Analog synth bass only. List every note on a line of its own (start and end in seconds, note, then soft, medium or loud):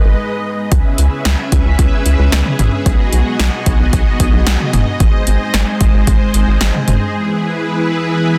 0.05 0.15 G#1 loud
0.72 0.82 C#2 loud
0.98 1.08 C#2 loud
1.25 1.35 C#2 loud
1.52 1.62 C#2 loud
1.65 1.75 C#2 loud
1.79 1.89 C#2 loud
2.06 2.15 C#2 medium
2.19 2.29 C#2 loud
2.32 2.42 C#2 loud
2.59 2.69 A1 loud
2.86 2.96 B1 loud
3.13 3.23 B1 loud
3.39 3.49 B1 loud
3.66 3.76 B1 loud
3.80 3.89 B1 loud
3.93 4.03 B1 loud
4.20 4.30 B1 loud
4.33 4.43 B1 loud
4.47 4.56 B1 loud
4.73 4.83 F#1 medium
5.00 5.10 G#1 loud
5.27 5.37 G#1 medium
5.54 5.64 G#1 loud
5.81 5.91 G#1 loud
5.94 6.04 G#1 loud
6.07 6.17 G#1 loud
6.34 6.44 G#1 loud
6.48 6.57 G#1 loud
6.61 6.71 G#1 loud
6.88 6.98 F#1 medium